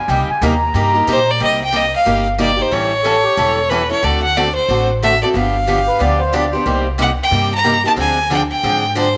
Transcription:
0.08 upright bass C2, steel-string acoustic guitar C3 G3 A#3 D#4 G4, accordion G5
0.29 accordion G#5, muted upright bass stroke
0.41 upright bass D#2, steel-string acoustic guitar C3 G3 A#3 D#4 G4, accordion A#5
0.61 accordion A#5
0.74 upright bass G2, steel-string acoustic guitar C3 G3 A#3 D#4 G4
0.94 steel-string acoustic guitar A#3 D#4 G4
1.07 upright bass A#2, steel-string acoustic guitar C3 G3 A#3 D#4 G4
1.12 violin C5
1.30 violin D5
1.40 upright bass C2, steel-string acoustic guitar C3 G3 A#3 D#4 G4
1.44 violin D#5
1.64 violin G5
1.73 steel-string acoustic guitar C3 G3 A#3 D#4 G4, violin D#5
1.96 violin F5
2.05 upright bass G1, steel-string acoustic guitar C3 G3 A#3 D#4 G4
2.38 steel-string acoustic guitar C3 G3 A#3 D#4 G4, violin D5
2.56 steel-string acoustic guitar A#3 D#4 G4
2.62 violin C5
2.71 upright bass A1, steel-string acoustic guitar E3 G3 C#4 E4 A4, violin C#5
3.03 steel-string acoustic guitar E3 G3 C#4 E4 A4, accordion A4
3.23 accordion G4
3.37 upright bass E1, steel-string acoustic guitar E3 G3 C#4 E4 A4, accordion A4
3.69 steel-string acoustic guitar E3 G3 C#4 E4 A4, violin B4
3.89 steel-string acoustic guitar C#4 E4 A4, violin C#5
4.02 upright bass D2, steel-string acoustic guitar D3 A3 C4 F#4 A4, violin D5
4.23 violin F#5
4.37 steel-string acoustic guitar D3 A3 C4 F#4 A4, violin D5
4.55 violin C5
4.68 upright bass A1, steel-string acoustic guitar D3 A3 C4 F#4 A4
5.03 steel-string acoustic guitar D3 A3 C4 F#4 A4, violin E5
5.23 steel-string acoustic guitar C4 F#4 A4, violin D5
5.34 upright bass G1, steel-string acoustic guitar D3 F3 B3 D4 G4, violin F5
5.67 steel-string acoustic guitar D3 F3 B3 D4 G4, accordion G4
5.88 accordion B4
5.99 upright bass D2, steel-string acoustic guitar D3 F3 B3 D4 G4, accordion D5
6.20 accordion C5
6.33 steel-string acoustic guitar D3 F3 B3 D4 G4, accordion D5
6.52 steel-string acoustic guitar B3 D4 G4, accordion C5
6.66 upright bass C2, steel-string acoustic guitar C3 G3 A#3 D#4 G4
6.98 steel-string acoustic guitar C3 G3 A#3 D#4 G4, violin F#5
7.23 violin G5
7.31 upright bass G2, steel-string acoustic guitar C3 G3 A#3 D#4 G4
7.55 violin A#5
7.64 steel-string acoustic guitar C3 G3 A#3 D#4 G4
7.84 steel-string acoustic guitar A#3 D#4 G4, violin A5
7.96 upright bass D2, steel-string acoustic guitar D3 F3 C4 D4 G#4
8.01 violin G#5
8.30 steel-string acoustic guitar D3 F3 C4 D4 G#4, violin G5
8.51 violin G5
8.63 upright bass G#2, steel-string acoustic guitar D3 F3 C4 D4 G#4
8.95 steel-string acoustic guitar D3 F3 C4 D4 G#4, violin C5

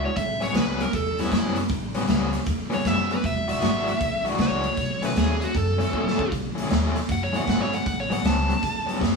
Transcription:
0.05 lead electric guitar C#5
0.16 upright bass A1, lead electric guitar E5, kick, closed hi-hat
0.41 overdriven electric guitar A2 G3 B3 C#4, lead electric guitar C#5, closed hi-hat
0.54 upright bass C#2, overdriven electric guitar A2 G3 B3 C#4, lead electric guitar B4, snare, closed hi-hat
0.80 lead electric guitar A#4, closed hi-hat
0.93 upright bass E2, lead electric guitar A4, kick, closed hi-hat
1.18 overdriven electric guitar A2 G3 B3 C#4, lead electric guitar E4, closed hi-hat
1.32 upright bass F#2, overdriven electric guitar A2 G3 B3 C#4, kick, snare, closed hi-hat
1.56 closed hi-hat
1.69 upright bass A1, kick, closed hi-hat
1.94 overdriven electric guitar A2 G3 B3 C#4, closed hi-hat
2.08 upright bass C#2, overdriven electric guitar A2 G3 B3 C#4, snare, closed hi-hat
2.33 closed hi-hat
2.46 upright bass E2, kick, snare, closed hi-hat
2.70 overdriven electric guitar A2 G3 B3 C#4, closed hi-hat
2.74 lead electric guitar C#5
2.84 upright bass F#2, overdriven electric guitar A2 G3 B3 C#4, lead electric guitar E5, kick, snare, closed hi-hat
3.11 lead electric guitar B4, closed hi-hat
3.24 upright bass E1, lead electric guitar E5, kick, closed hi-hat
3.48 overdriven electric guitar E3 G#3 D4 F#4, lead electric guitar E5, closed hi-hat
3.62 upright bass G#1, overdriven electric guitar E3 G#3 D4 F#4, snare, closed hi-hat
3.87 closed hi-hat
4.01 upright bass B1, kick, closed hi-hat
4.25 overdriven electric guitar E3 G#3 D4 F#4, closed hi-hat
4.39 upright bass C#2, overdriven electric guitar E3 G#3 D4 F#4, lead electric guitar C#5, kick, snare, closed hi-hat
4.63 closed hi-hat
4.77 upright bass B1, kick, closed hi-hat
5.02 overdriven electric guitar B2 D#3 A3 C#4, lead electric guitar B4, closed hi-hat
5.15 upright bass D#2, overdriven electric guitar B2 D#3 A3 C#4, lead electric guitar G#4, snare, closed hi-hat
5.42 lead electric guitar F#4, closed hi-hat
5.55 upright bass F#2, lead electric guitar A4, kick, closed hi-hat
5.78 overdriven electric guitar B2 D#3 A3 C#4, closed hi-hat
5.92 upright bass G#2, overdriven electric guitar B2 D#3 A3 C#4, kick
6.08 snare
6.19 kick
6.32 upright bass B1, kick, closed hi-hat
6.55 overdriven electric guitar B2 D#3 A3 C#4, closed hi-hat
6.69 upright bass D#2, overdriven electric guitar B2 D#3 A3 C#4, snare, closed hi-hat
6.96 closed hi-hat
7.09 upright bass F#2, lead electric guitar F#5, kick, snare, closed hi-hat
7.24 lead electric guitar C#5
7.33 overdriven electric guitar B2 D#3 A3 C#4, lead electric guitar F#5, closed hi-hat
7.45 upright bass G#1, overdriven electric guitar B2 D#3 A3 C#4, kick, snare, closed hi-hat
7.50 lead electric guitar F#5
7.62 lead electric guitar C#5
7.73 lead electric guitar F#5, closed hi-hat
7.86 upright bass A1, lead electric guitar F#5, kick, closed hi-hat
8.00 lead electric guitar C#5
8.10 overdriven electric guitar A2 G3 B3 C#4, lead electric guitar F#5, closed hi-hat
8.23 upright bass C#2, overdriven electric guitar A2 G3 B3 C#4, lead electric guitar A5, snare, closed hi-hat
8.50 closed hi-hat
8.63 upright bass E2, kick, closed hi-hat
8.86 overdriven electric guitar A2 G3 B3 C#4, closed hi-hat
8.99 upright bass F#2, overdriven electric guitar A2 G3 B3 C#4, kick, closed hi-hat
9.03 snare

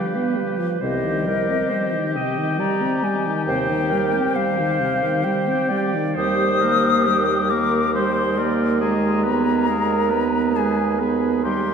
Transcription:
Already playing: french horn G3, oboe G4, clarinet B4, flute F5
0.15 french horn B3
0.37 french horn G3
0.59 french horn F3
0.81 bassoon C2, french horn C3, oboe G4, clarinet C5, flute D#5
1.04 french horn D#3
1.26 french horn G3, clarinet A#4
1.50 french horn C4
1.69 french horn G3, clarinet C5
1.94 french horn D#3
2.15 french horn C3, clarinet D#5, flute G5
2.38 french horn D#3
2.59 french horn G3, clarinet D5, flute A#5
2.82 french horn C4
3.04 french horn G3, flute G#5
3.26 french horn D#3
3.46 bassoon D#2, french horn C3, clarinet C5, flute G5
3.70 french horn D#3
3.90 french horn G3, clarinet A#4
4.14 french horn C4
4.34 french horn G3, clarinet C5, flute F5
4.59 french horn D#3
4.81 french horn C3
5.03 french horn D#3
5.22 french horn G3, clarinet C5, flute G5
5.48 french horn C4
5.68 french horn G3, clarinet D5
5.95 french horn D#3
6.15 bassoon D#2, french horn G3, oboe G4, clarinet C5, flute D#6
6.61 french horn A#3, oboe A#4
7.04 french horn G3, oboe G4, clarinet A#4
7.50 french horn A#3, clarinet A#4, oboe A#4, flute D6
7.94 french horn G3, oboe G4, clarinet C5, flute C6
8.37 french horn A#3, oboe A#4, clarinet D5
8.81 french horn G#3, oboe G#4, clarinet D#5, flute A#5
9.23 french horn B3, clarinet G#4, oboe B4
9.68 french horn G#3, oboe G#4, clarinet A#4
10.10 french horn B3, oboe B4
10.55 french horn G#3, oboe G#4, clarinet B4, flute G#5
10.99 french horn B3, clarinet G#4, oboe B4
11.44 bassoon D#2, french horn G3, oboe G4, clarinet A#4, flute C6

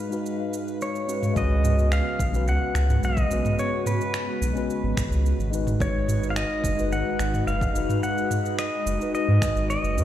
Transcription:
Already playing: analog synth pad G#2 G#3 B4 F5, pedal steel guitar B4
0.09 tine electric piano G#3 D#4 F#4, cabasa
0.14 tine electric piano B4
0.26 cabasa
0.53 cabasa
0.68 cabasa
0.81 pedal steel guitar C#5, cabasa
0.95 cabasa
1.07 tine electric piano G#3 C#4 F#4 B4, cabasa
1.23 mid tom, cabasa
1.34 analog synth bass C#2, analog synth pad C#3 G#3 B3 F#4, tine electric piano G#3 C#4 F#4, pedal steel guitar D#5, kick, cabasa
1.38 tine electric piano B4
1.64 mid tom, cabasa
1.79 cabasa
1.92 pedal steel guitar F5, finger snap, cabasa
2.19 analog synth bass B1, kick, cabasa
2.31 tine electric piano G#3 C#4 F#4, cabasa
2.36 tine electric piano B4
2.47 analog synth bass C#2, pedal steel guitar F#5, cabasa
2.75 analog synth bass C#2, finger snap, cabasa
2.89 mid tom, cabasa
3.03 analog synth bass B1, pedal steel guitar D#5, cabasa
3.17 kick, cabasa
3.28 analog synth bass B1, tine electric piano G#3 C#4 F#4, cabasa
3.33 tine electric piano B4
3.45 mid tom, cabasa
3.59 pedal steel guitar C#5, cabasa
3.86 pedal steel guitar B4, mid tom, cabasa
4.01 cabasa
4.14 finger snap, cabasa
4.42 analog synth bass B1, cabasa
4.53 tine electric piano G#3 C#4 F#4, cabasa
4.58 tine electric piano B4
4.70 cabasa
4.84 analog synth bass G#1
4.97 analog synth bass G#1, finger snap, kick, cabasa
5.11 analog synth bass C#2, cabasa
5.26 cabasa
5.39 analog synth bass G#1, cabasa
5.50 tine electric piano G#3 D#4 F#4, analog synth pad G#3 D#4 F#4 B4, cabasa
5.55 tine electric piano B4
5.67 mid tom, cabasa
5.80 analog synth bass G#1, pedal steel guitar C#5, kick, cabasa
6.08 mid tom, cabasa
6.23 cabasa
6.30 pedal steel guitar F5
6.36 pedal steel guitar D#5, finger snap, cabasa
6.64 analog synth bass F#1, kick, cabasa
6.76 tine electric piano G#3 D#4 F#4, cabasa
6.80 tine electric piano B4
6.92 analog synth bass G#1, pedal steel guitar F#5, cabasa
7.19 analog synth bass G#1, finger snap, cabasa
7.34 mid tom, cabasa
7.47 analog synth bass F#1, pedal steel guitar F5, cabasa
7.61 kick, cabasa
7.73 analog synth bass F#1, tine electric piano G#3 D#4 F#4, cabasa
7.77 tine electric piano B4
7.89 mid tom, cabasa
8.03 pedal steel guitar F#5, cabasa
8.18 cabasa
8.31 mid tom, cabasa
8.46 cabasa
8.59 pedal steel guitar D#5, finger snap, cabasa
8.86 analog synth bass F#1, cabasa
8.98 tine electric piano G#3 D#4 F#4, cabasa
9.03 tine electric piano B4
9.15 pedal steel guitar D#5, cabasa
9.28 analog synth bass G#2
9.42 finger snap, kick, cabasa
9.56 analog synth bass G#1, cabasa
9.70 pedal steel guitar D#5, cabasa
9.84 analog synth bass F#1, cabasa
9.95 analog synth bass G#2, tine electric piano G#3 C#4 F#4, cabasa
9.99 tine electric piano B4

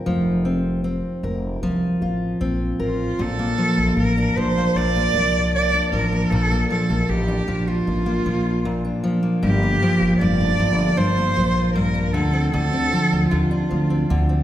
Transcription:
Already playing: steel-string acoustic guitar C4 F4 A#4
0.06 upright bass F1, steel-string acoustic guitar F3
0.45 steel-string acoustic guitar C4
0.84 steel-string acoustic guitar C4
1.23 upright bass F1, steel-string acoustic guitar A#4
1.63 upright bass C2, steel-string acoustic guitar F3
2.02 upright bass A1, steel-string acoustic guitar F4
2.41 upright bass A#1, steel-string acoustic guitar C4
2.80 upright bass A1, cello F4, steel-string acoustic guitar A#4
3.19 upright bass A#1, steel-string acoustic guitar A#2, cello A4
3.39 steel-string acoustic guitar A#3
3.58 steel-string acoustic guitar F3
3.78 upright bass A#1
3.97 upright bass A1, cello A#4
4.18 steel-string acoustic guitar D4
4.36 upright bass A#1, steel-string acoustic guitar F3, cello C5
4.58 steel-string acoustic guitar A#3
4.75 upright bass A#1, steel-string acoustic guitar A#2, cello D5
4.96 steel-string acoustic guitar A#3
5.14 upright bass C2, steel-string acoustic guitar F3
5.55 cello D5
5.74 steel-string acoustic guitar D4
5.92 upright bass A1, steel-string acoustic guitar F3, cello A#4
6.13 steel-string acoustic guitar A#3
6.31 upright bass A#1, steel-string acoustic guitar A#2, cello A4
6.51 steel-string acoustic guitar A#3
6.70 steel-string acoustic guitar F3, cello A4
6.90 upright bass A#1
7.09 upright bass A1, cello G4
7.28 steel-string acoustic guitar D4
7.48 upright bass A#1, steel-string acoustic guitar F3
7.68 steel-string acoustic guitar A#3, cello F4
7.87 upright bass A1
8.06 steel-string acoustic guitar A#3
8.26 upright bass A#1, steel-string acoustic guitar F3
8.65 steel-string acoustic guitar A#2
8.85 steel-string acoustic guitar D4
9.04 steel-string acoustic guitar F3
9.23 steel-string acoustic guitar A#3
9.43 upright bass G1, steel-string acoustic guitar G2, cello G4
9.63 steel-string acoustic guitar A#3
9.82 steel-string acoustic guitar F3
10.01 upright bass G1
10.20 upright bass F1, steel-string acoustic guitar G2, cello D5
10.41 steel-string acoustic guitar D4
10.60 upright bass G1, steel-string acoustic guitar F3
10.79 steel-string acoustic guitar A#3
10.97 upright bass G1, steel-string acoustic guitar G2, cello C5
11.18 steel-string acoustic guitar A#3
11.36 upright bass A#1, steel-string acoustic guitar F3
11.75 steel-string acoustic guitar G2, cello A#4
11.95 steel-string acoustic guitar D4
12.13 upright bass D2, steel-string acoustic guitar D3, cello A4
12.33 steel-string acoustic guitar C4
12.52 upright bass D2, steel-string acoustic guitar D3, cello A4
12.73 steel-string acoustic guitar C4
12.93 steel-string acoustic guitar F3
13.13 upright bass D2
13.31 upright bass D#2, steel-string acoustic guitar D3, cello F4
13.51 steel-string acoustic guitar D4
13.71 upright bass D2, steel-string acoustic guitar F3
13.90 steel-string acoustic guitar C4
14.10 upright bass D2, steel-string acoustic guitar D3
14.29 steel-string acoustic guitar C4

